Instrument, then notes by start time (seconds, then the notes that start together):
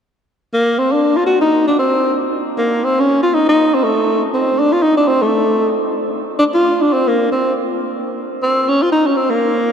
tenor saxophone
0.54 A#3
0.79 C4
0.92 D4
1.16 F4
1.26 F#4
1.41 D#4
1.68 D4
1.79 C4
2.58 A#3
2.84 C4
3.00 C#4
3.23 F4
3.34 D#4
3.49 D#4
3.74 C4
3.84 A3
4.34 C4
4.59 D4
4.73 F4
4.82 D#4
4.97 D4
5.08 C4
5.22 A3
6.39 D4
6.54 F4
6.81 D4
6.93 C4
7.08 A#3
7.32 C4
8.43 C4
8.68 C#4
8.82 F4
8.92 D#4
9.07 C#4
9.17 C4
9.30 A#3